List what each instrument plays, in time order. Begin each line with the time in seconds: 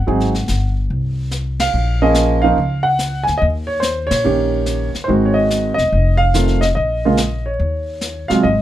Already playing: grand piano F#5
0.07 upright bass G#1, grand piano F#3 C4 D#4 G#4, brush sweep
0.20 snare
0.35 snare
0.48 upright bass G1, snare, hi-hat pedal
0.90 upright bass C2, brush sweep
1.31 snare, hi-hat pedal
1.60 grand piano F5, snare, ride
1.74 upright bass A#1, brush sweep
2.02 grand piano F3 A#3 C#4 G#4 D#5
2.14 snare, hi-hat pedal
2.42 grand piano F3 A#3 C#4 D#4 F5
2.57 upright bass C#2, brush sweep
2.83 grand piano F#5
2.99 snare, hi-hat pedal
3.24 grand piano G#5, snare
3.28 upright bass D2
3.38 grand piano D#5, brush sweep
3.42 upright bass D#2
3.67 grand piano C#5
3.80 grand piano C5, snare, hi-hat pedal
4.07 grand piano C#5
4.11 upright bass A#2, snare, ride
4.24 upright bass A#1, grand piano D#3 A#3 C#4 G4, brush sweep
4.66 snare, hi-hat pedal
4.95 muted upright bass stroke, snare
5.04 grand piano D#3 C5
5.08 upright bass G#1, grand piano G#3 C4 F#4, brush sweep
5.25 grand piano C#5
5.34 grand piano D#5
5.50 snare, hi-hat pedal
5.74 upright bass E1, grand piano D#5, snare
5.92 upright bass F1, brush sweep
6.17 grand piano F5
6.34 grand piano D#3 A3 C4 F4, snare, hi-hat pedal
6.48 snare
6.61 grand piano D#5, snare
6.75 upright bass A#1, grand piano D#5, brush sweep
7.05 grand piano C#3 G#3 A#3 F4
7.17 snare, hi-hat pedal
7.46 grand piano C#5
7.59 upright bass D#2, brush sweep
8.01 snare, hi-hat pedal
8.28 grand piano C3 F#3 G#3 F4 F5, muted upright bass stroke, snare
8.43 upright bass G#1, grand piano D#5, brush sweep